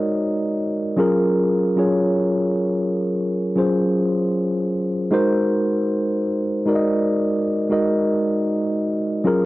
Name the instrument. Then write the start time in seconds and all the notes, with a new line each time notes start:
tine electric piano
Already playing: G#3 D#4 F#4 A#4 C#5 D5 D#5
0.97 F#3 C#4 F4 G#4 A#4
1.76 F#3 C#4 F4 G#4 C#5
3.55 F#3 C#4 F4 G#4 C5
5.11 G#3 D#4 F#4 A#4 C5
6.66 G#3 D#4 F#4 A#4 D5
6.75 D#5
7.69 G#3 D#4 F#4 A#4 D#5
9.24 F#3 C#4 F4 G#4 A#4